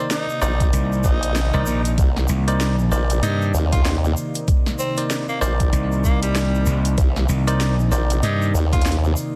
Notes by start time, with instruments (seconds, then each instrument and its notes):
Already playing: analog synth pad C3 D#3 A#3 D5, tine electric piano D#4 A#4 C5 D5
0.11 tenor saxophone D#4, snare, closed hi-hat, shaker
0.29 shaker
0.41 wobble bass A#1, tine electric piano D#4 A#4 C5 D5, tenor saxophone D#4, shaker
0.60 kick, closed hi-hat, shaker
0.73 slap bass C2, closed hi-hat, shaker
0.92 shaker
1.04 wobble bass A#1, tenor saxophone D#4, kick, shaker
1.23 closed hi-hat, shaker
1.36 snare, closed hi-hat, shaker
1.53 slap bass C2, tine electric piano D#4 A#4 C5 D5, shaker
1.66 slap bass A#1, shaker
1.85 closed hi-hat, shaker
1.98 wobble bass C2, analog synth pad D#4, kick, closed hi-hat, shaker
2.16 snare, shaker
2.28 slap bass C2, shaker
2.48 tine electric piano D#4 A#4 C5 D5, closed hi-hat, shaker
2.60 snare, closed hi-hat, shaker
2.72 slap bass B1
2.79 shaker
2.92 wobble bass A#1, tine electric piano D#4 A#4 C5 D5, shaker
3.10 closed hi-hat, shaker
3.22 slap bass G2, tenor saxophone D#4, closed hi-hat, shaker
3.42 shaker
3.54 wobble bass D#2, shaker
3.72 tenor saxophone F4, kick, closed hi-hat, shaker
3.85 snare, closed hi-hat, shaker
4.04 shaker
4.17 shaker
4.35 closed hi-hat, shaker
4.48 kick, closed hi-hat, shaker
4.66 snare, shaker
4.79 tenor saxophone C4, shaker
4.97 tine electric piano D#4 A#4 C5 D5, closed hi-hat, shaker
5.10 snare, closed hi-hat, shaker
5.29 tenor saxophone A#3, shaker
5.41 wobble bass A#1, tenor saxophone A#3, tine electric piano D#4 A#4 C5 D5, shaker
5.60 kick, closed hi-hat, shaker
5.73 slap bass C2, closed hi-hat, shaker
5.92 shaker
6.04 tenor saxophone A#3, kick, shaker
6.23 tenor saxophone G3, closed hi-hat, shaker
6.35 snare, closed hi-hat, shaker
6.55 shaker
6.66 slap bass C2, shaker
6.85 closed hi-hat, shaker
6.98 wobble bass C2, kick, closed hi-hat, shaker
7.16 snare, shaker
7.29 slap bass C2, shaker
7.47 tine electric piano D#4 A#4 C5 D5, closed hi-hat, shaker
7.61 snare, closed hi-hat, shaker
7.72 slap bass B1
7.79 shaker
7.91 wobble bass A#1, tine electric piano D#4 A#4 C5 D5, shaker
8.10 closed hi-hat, shaker
8.23 slap bass G2, tenor saxophone D#4, closed hi-hat, shaker
8.42 shaker
8.54 wobble bass D#2, shaker
8.73 tenor saxophone F4, kick, closed hi-hat, shaker
8.82 snare, closed hi-hat
8.85 closed hi-hat, shaker
8.92 closed hi-hat
9.04 shaker
9.17 shaker